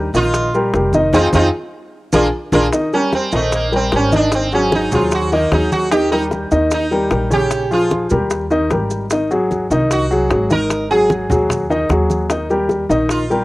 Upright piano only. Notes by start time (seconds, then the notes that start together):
0.15 D#3 D#4 D#5
0.55 G3 G4 A#4
0.75 G3 G4 A#4
0.94 D#3 D#4 D#5
1.14 D#4 F4 G#4
1.34 D#4 F4 G#4
2.13 F4 G#4 A#4
2.53 F4 G#4 A#4
2.73 D#3 D#4 D#5
2.93 G3 G4 A#4
3.33 D#3 D#4 D#5
3.72 G3 G4 A#4
3.92 G3 G4 A#4
4.12 D#3 D#4 D#5
4.52 F#3 F#4 G#4
4.92 F#3 F#4 G#4
5.32 D#3 D#4 D#5
5.52 F#3 F#4 G#4
5.92 D#3 D#4 D#5
6.12 G3 G4 A#4
6.52 D#3 D#4 D#5
6.91 G3 G4 A#4
7.11 G3 G4 A#4
7.31 C#3 C#4 C#5
7.71 F3 F4 G#4
8.11 G3 G4 A#4
8.51 D#3 D#4 D#5
8.71 G3 G4 A#4
9.12 D#3 D#4 D#5
9.31 F#3 F#4 G#4
9.71 D#3 D#4 D#5
10.11 F#3 F#4 G#4
10.30 F#3 F#4 G#4
10.50 D#3 D#4 D#5
10.91 F#3 F#4 G#4
11.30 F#3 F#4 G#4
11.70 D#3 D#4 D#5
11.91 F#3 F#4 G#4
12.30 D#3 D#4 D#5
12.50 G3 G4 A#4
12.89 D#3 D#4 D#5
13.30 G3 G4 A#4